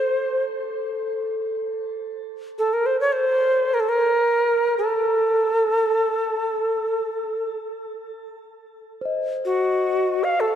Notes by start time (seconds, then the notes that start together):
Already playing: A4 C5
2.58 A4
2.73 A#4
2.86 C5
3.00 C#5
3.12 C5
3.74 A#4
3.80 A4
3.89 A#4
4.78 A4
9.01 C5
9.05 D#5
9.45 F#4
10.24 F5
10.40 A4